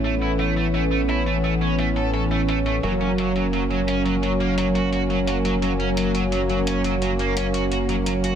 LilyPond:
<<
  \new Staff \with { instrumentName = "Analog polysynth" } { \time 4/4 \key fis \mixolydian \tempo 4 = 86 <a, cis' e' a' cis''>1 | <fis cis' fis' ais' cis''>1~ | <fis cis' fis' ais' cis''>1 | }
  \new Staff \with { instrumentName = "Analog synth pad" } { \time 4/4 \key fis \mixolydian << { cis'1~ | cis'1~ | cis'1 | } \\ { <e b>1 | <fis ais>1~ | <fis ais>1 | } >> }
  \new Staff \with { instrumentName = "Overdriven electric guitar" } { \time 4/4 \key fis \mixolydian a16 e'16 a16 a16 a16 a16 e'16 a16 a16 cis'16 a16 a'16 a'16 a16 a16 a16 | fis16 cis'16 fis16 fis16 fis16 fis16 cis'16 fis16 fis16 ais16 fis16 fis'16 fis'16 fis16 fis16 fis16 | fis16 cis'16 fis16 fis16 fis16 fis16 cis'16 fis16 fis16 ais16 cis'16 fis'16 fis'16 fis16 fis16 fis'16 | }
  \new Staff \with { instrumentName = "Analog synth bass" } { \clef bass \time 4/4 \key fis \mixolydian a,,1 | fis,,1~ | fis,,1 | }
  \new DrumStaff \with { instrumentName = "Drums" } \drummode { \time 4/4 hh16 hh16 hh16 hh16 hh16 hh16 hh16 hh16 hh16 hh16 hh16 hh16 hh16 hh16 hh16 hh16 | hh16 hh16 hh16 hh16 hh16 hh16 hh16 hh16 hh16 hh16 hh16 hh16 hh16 hh16 hh16 hh16 | hh16 hh16 hh16 hh16 hh16 hh16 hh16 hh16 hh16 hh16 hh16 hh16 hh16 hh16 hh16 hh16 | }
>>